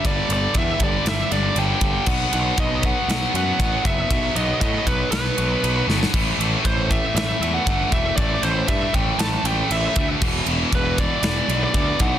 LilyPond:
<<
  \new Staff \with { instrumentName = "Lead electric guitar" } { \time 4/4 \key a \dorian \tempo 4 = 118 d''8 d''8 e''8 d''8 e''8 d''8 g''8 g''8 | fis''8 fis''8 dis''8 fis''4 fis''4 e''8~ | e''8 dis''8 dis''8 b'8 b'4. r8 | r4 c''8 e''8 e''8. fis''8. e''8 |
d''8 c''8 e''8 g''8 a''8 g''8 e''8. r16 | r4 b'8 d''4~ d''16 d''8. fis''8 | }
  \new Staff \with { instrumentName = "Distorted electric guitar" } { \clef bass \time 4/4 \key a \dorian <g, d g>8 <g, d g>8 <g, d g>8 <g, d g>8 <g, d g>8 <g, d g>8 <g, d g>8 <g, d g>8 | <b, fis b>8 <b, fis b>8 <b, fis b>8 <b, fis b>8 <b, fis b>8 <b, fis b>8 <b, fis b>8 <b, fis b>8 | <b, fis b>8 <b, fis b>8 <b, fis b>8 <b, fis b>8 <b, fis b>8 <b, fis b>8 <b, fis b>8 <b, fis b>8 | <a, e a>8 <a, e a>8 <a, e a>8 <a, e a>8 <a, e a>8 <a, e a>8 <a, e a>8 <a, e a>8 |
<a, e a>8 <a, e a>8 <a, e a>8 <a, e a>8 <a, e a>8 <a, e a>8 <a, e a>8 <a, e a>8 | <e, b, e>8 <e, b, e>8 <e, b, e>8 <e, b, e>8 <e, b, e>8 <e, b, e>8 <e, b, e>8 <e, b, e>8 | }
  \new Staff \with { instrumentName = "Picked electric bass" } { \clef bass \time 4/4 \key a \dorian g,,8 g,,8 e,8 g,,8 g,,8 g,,8 g,,8 g,,8 | b,,8 b,,8 b,,4 b,,8 fis,8 a,,8 fis,,8 | b,,8 b,,8 a,8 b,,8 b,,8 b,,8 b,,8 g,,8 | a,,8 a,,8 a,,4 a,,8 e,8 g,,8 e,,8 |
a,,8 a,,8 g,8 a,,8 a,,8 a,,8 a,,8 d,8 | e,,8 e,,8 e,,4 e,,8 b,,8 d,8 b,,8 | }
  \new DrumStaff \with { instrumentName = "Drums" } \drummode { \time 4/4 <bd cymr>8 cymr8 <bd cymr>8 <bd cymr>8 <cymr sn>8 cymr8 cymr8 <bd cymr>8 | <cymc bd>8 cymr8 <bd cymr>8 <bd cymr>8 <cymr sn>8 cymr8 <bd cymr>8 <bd cymr>8 | <bd cymr>8 cymr8 <bd cymr>8 <bd cymr>8 <cymr sn>8 cymr8 cymr8 sn16 sn16 | <cymc bd>8 cymr8 <bd cymr>8 <bd cymr>8 <cymr sn>8 cymr8 <bd cymr>8 <bd cymr>8 |
<bd cymr>8 cymr8 <bd cymr>8 <bd cymr>8 <cymr sn>8 cymr8 cymr8 <bd cymr>8 | <cymc bd>8 cymr8 <bd cymr>8 <bd cymr>8 <cymr sn>8 cymr8 <bd cymr>8 <bd cymr>8 | }
>>